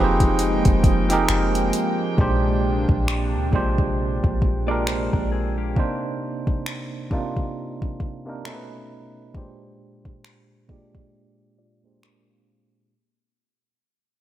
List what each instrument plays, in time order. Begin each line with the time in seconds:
Already playing: 808-style bass F1, tine electric piano F3 C4 D#4 G4 G#4 A#4 B4, analog synth pad F3 G#3 A#3 D#4 G5
0.04 tine electric piano C5
0.20 kick, closed hi-hat
0.39 closed hi-hat
0.65 808-style bass F1, kick, closed hi-hat
0.84 808-style bass F1, kick, closed hi-hat
1.09 tine electric piano F3 C4 D#4 G4 G#4 A#4, closed hi-hat
1.28 808-style bass F1, finger snap, closed hi-hat
1.55 closed hi-hat
1.73 closed hi-hat
2.17 808-style bass A#1, tine electric piano A#2 G#3 D4 G4 C5, analog synth pad C3 D4, kick
2.89 808-style bass A#1, kick
3.08 finger snap
3.35 808-style bass D2
3.52 808-style bass A#1, tine electric piano A#2 G#3 D4 G4 C5, kick
3.78 kick
4.24 808-style bass A#1, kick
4.42 kick
4.67 tine electric piano A#2 G#3 D4 G4 A#4, clean electric guitar F4 D5
4.87 clean electric guitar C5, finger snap
5.13 808-style bass A#1, clean electric guitar D4 A#4, kick
5.32 clean electric guitar C4 G#4
5.58 clean electric guitar A#3 G4
5.75 tine electric piano C3 A#3 D4 D#4, kick
5.79 tine electric piano C5
6.47 kick
6.66 finger snap
7.10 tine electric piano C3 A#3 D4 D#4, kick
7.14 tine electric piano F4
7.37 kick
7.82 kick
8.00 kick
8.25 tine electric piano C3 A#3 D4 D#4
8.29 tine electric piano A#4
8.44 tine electric piano B2 A3 C#4 D#4 A4, finger snap
8.55 tine electric piano B4
9.34 tine electric piano A#2 G#3 D4 G4 C5, kick
10.05 kick
10.25 finger snap
10.68 tine electric piano A#2 G#3 D4 G4 D5, kick
10.95 kick
11.59 clean electric guitar F4 D5
11.84 tine electric piano A#2 G#3 D4 G4 C5, clean electric guitar C5
12.03 clean electric guitar D4 A#4, tine electric piano G#5, finger snap
12.29 clean electric guitar C4 G#4, tine electric piano F5